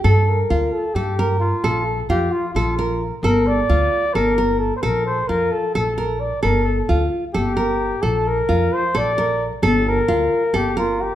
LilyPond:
<<
  \new Staff \with { instrumentName = "Flugelhorn" } { \time 7/8 \key g \minor \tempo 4 = 132 a'8 bes'4 a'8 g'4 f'8~ | f'8 a'8 g'8 f'8 f'4~ f'32 r16. | bes'8 d''4. bes'4 a'16. c''32 | bes'8 c''8 bes'8 a'8 a'4 d''8 |
bes'8 a'8.~ a'32 r8 r32 g'4. | a'8 bes'4 c''8 d''4~ d''32 r16. | a'8 bes'4. g'8 f'8 g'8 | }
  \new Staff \with { instrumentName = "Nylon-string guitar" } { \time 7/8 \key g \minor a'4 f'4 a'8 bes'4 | a'4 f'4 a'8 bes'4 | a'4 f'4 a'8 bes'4 | a'4 f'4 a'8 bes'4 |
a'4 f'4 a'8 bes'4 | a'4 f'4 a'8 bes'4 | a'4 f'4 a'8 bes'4 | }
  \new Staff \with { instrumentName = "Upright bass" } { \clef bass \time 7/8 \key g \minor g,4 d,8 r8 g,4. | bes,,4 f,8 r8 bes,,4. | g,,4 d,8 r8 g,,4. | bes,,4 f,8 r8 bes,,4. |
g,,4 d,8 r8 g,,4. | bes,,4 f,8 r8 bes,,4. | g,,4 d,8 r8 g,,4. | }
>>